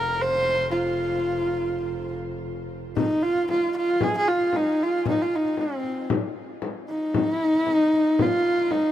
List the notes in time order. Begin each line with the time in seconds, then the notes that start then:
Already playing: F1 A#4
0.21 C5
0.71 F4
2.96 D#4, frame drum
3.23 F4
3.36 frame drum
3.49 F4, frame drum
3.77 F4
4.01 G#4, frame drum
4.17 G#4
4.28 F4
4.40 frame drum
4.53 D#4, frame drum
4.83 F4
5.06 D#4, frame drum
5.22 F4
5.35 D#4
5.45 frame drum
5.57 C4, frame drum
5.84 frame drum
6.10 frame drum
6.62 frame drum
6.88 D#4
7.14 frame drum
7.33 E4
7.45 D#4
7.54 frame drum
7.58 E4
7.67 D#4, frame drum
7.93 frame drum
8.19 F4, frame drum
8.58 frame drum
8.71 D#4, frame drum